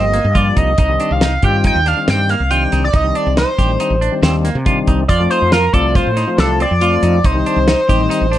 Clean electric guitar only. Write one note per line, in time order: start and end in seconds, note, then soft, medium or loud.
0.13 0.26 A#3 medium
0.35 0.47 F4 medium
0.57 0.69 D#4 medium
0.79 0.91 D#4 medium
1.00 1.12 D4 medium
1.22 1.34 D#4 medium
1.44 1.56 G4 medium
1.65 1.77 D#4 medium
1.86 1.98 D4 medium
2.08 2.20 C4 medium
2.30 2.42 A#3 medium
2.51 2.63 F4 medium
2.72 2.85 D#4 medium
2.93 3.06 D#4 medium
3.15 3.27 D4 medium
3.37 3.49 D#4 medium
3.58 3.71 G4 medium
3.80 3.92 D#4 medium
4.01 4.14 D4 medium
4.23 4.35 C4 medium
4.45 4.57 A#3 medium
4.66 4.78 F4 medium
4.88 5.00 D#4 medium
5.09 5.21 F4 medium
5.31 5.43 D#4 medium
5.53 5.65 F4 medium
5.74 5.86 A4 medium
5.95 6.07 F4 medium
6.17 6.29 D#4 medium
6.38 6.50 D4 medium
6.60 6.72 C4 medium
6.82 6.94 F4 medium
7.03 7.15 D#4 medium
7.25 7.37 D#4 medium
7.46 7.58 D4 medium
7.68 7.80 D#4 medium
7.89 8.01 G4 medium
8.10 8.22 D#4 medium
8.32 8.38 D4 medium